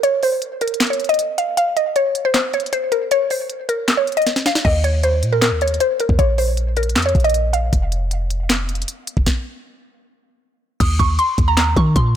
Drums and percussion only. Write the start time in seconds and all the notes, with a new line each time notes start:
0.03 closed hi-hat
0.23 open hi-hat
0.42 closed hi-hat
0.61 closed hi-hat
0.68 closed hi-hat
0.74 closed hi-hat
0.80 snare, clap, closed hi-hat
0.87 closed hi-hat
0.93 closed hi-hat
1.00 closed hi-hat
1.04 closed hi-hat
1.09 closed hi-hat
1.14 closed hi-hat
1.19 closed hi-hat
1.38 closed hi-hat
1.57 closed hi-hat
1.77 closed hi-hat
1.96 closed hi-hat
2.15 closed hi-hat
2.34 snare, clap, closed hi-hat
2.53 closed hi-hat
2.60 closed hi-hat
2.66 closed hi-hat
2.73 closed hi-hat
2.92 closed hi-hat
3.11 closed hi-hat
3.30 open hi-hat
3.50 closed hi-hat
3.69 closed hi-hat
3.88 snare, clap, closed hi-hat
4.07 closed hi-hat
4.12 closed hi-hat
4.17 closed hi-hat
4.22 closed hi-hat
4.27 snare, closed hi-hat
4.36 snare
4.46 snare, closed hi-hat
4.55 snare
4.65 kick, crash
4.84 closed hi-hat
5.03 closed hi-hat
5.23 closed hi-hat
5.42 snare, clap, closed hi-hat
5.61 closed hi-hat
5.68 closed hi-hat
5.74 closed hi-hat
5.80 closed hi-hat
6.00 closed hi-hat
6.09 kick
6.19 kick, closed hi-hat
6.38 open hi-hat
6.57 closed hi-hat
6.77 closed hi-hat
6.83 closed hi-hat
6.89 closed hi-hat
6.96 snare, clap, closed hi-hat
7.02 closed hi-hat
7.09 closed hi-hat
7.15 kick, closed hi-hat
7.20 closed hi-hat
7.25 closed hi-hat
7.30 closed hi-hat
7.34 closed hi-hat
7.54 closed hi-hat
7.73 kick, closed hi-hat
7.92 closed hi-hat
8.11 closed hi-hat
8.30 closed hi-hat
8.50 snare, clap, closed hi-hat
8.69 closed hi-hat
8.75 closed hi-hat
8.82 closed hi-hat
8.88 closed hi-hat
9.07 closed hi-hat
9.17 kick
9.26 kick, snare
10.80 kick, closed hi-hat, crash
11.00 kick, closed hi-hat
11.19 closed hi-hat
11.38 kick, closed hi-hat
11.57 snare, clap, closed hi-hat
11.76 kick, closed hi-hat
11.96 kick, closed hi-hat